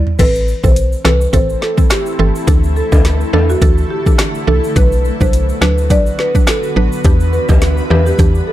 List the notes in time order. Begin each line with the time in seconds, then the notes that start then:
Already playing: G3 E4 D5
0.07 floor tom
0.19 A1 E3 A3 C4 E4 A4 B4, kick, closed hi-hat, crash, shaker
0.35 shaker
0.48 shaker
0.63 B1 E3 C4 A4 C5, kick, shaker
0.76 closed hi-hat, shaker
0.92 shaker
1.05 C2 E3 C4 A4 B4, cross-stick, snare
1.21 shaker
1.33 A1 E3 C4 A4 C5, kick, closed hi-hat, shaker
1.50 shaker
1.62 A4, snare
1.77 E3 C4 A4, kick, shaker
1.90 G4, cross-stick, snare, closed hi-hat, shaker
2.06 shaker
2.19 G1 E3 C4 A4
2.35 shaker
2.47 D2 D3 E3 D4 A4, kick, closed hi-hat, shaker
2.64 shaker
2.76 A4, shaker
2.92 D2 E3 D4 A4, kick, high timbale, shaker
3.05 snare, closed hi-hat, shaker
3.21 shaker
3.33 E2 E3 D4 A4, high timbale
3.50 F#4, shaker
3.61 D2 E3 D4 A4, kick, closed hi-hat, shaker
3.78 shaker
3.90 G4
4.06 E3 D4 A4, kick, shaker
4.18 cross-stick, snare, closed hi-hat, shaker
4.35 shaker
4.47 C2 E3 D4 A4
4.64 shaker
4.76 B1 D3 F#3 B3 D4 F#4 B4, kick, closed hi-hat, shaker
4.92 shaker
5.05 shaker
5.21 C2 F#3 D4 B4 C5, kick, shaker
5.33 closed hi-hat, shaker
5.49 shaker
5.61 D2 F#3 D4 B4, cross-stick, snare
5.78 shaker
5.90 B1 F#3 D4 B4 D5, kick, closed hi-hat, shaker
6.06 shaker
6.19 B4, snare
6.35 F#3 D4 B4, kick, shaker
6.47 A4, cross-stick, snare, closed hi-hat, shaker
6.63 shaker
6.76 A1 F#3 D4 B4
6.92 shaker
7.04 E2 E3 G3 D4 E4 G4, kick, closed hi-hat, shaker
7.20 shaker
7.33 B4, shaker
7.49 D2 E3 D4 G4, kick, high timbale, shaker
7.62 snare, closed hi-hat, shaker
7.78 shaker
7.90 E2 E3 D4 G4 B4, high timbale
8.06 G4, shaker
8.18 E2 E3 D4 G4, kick, closed hi-hat, shaker
8.35 shaker
8.47 A4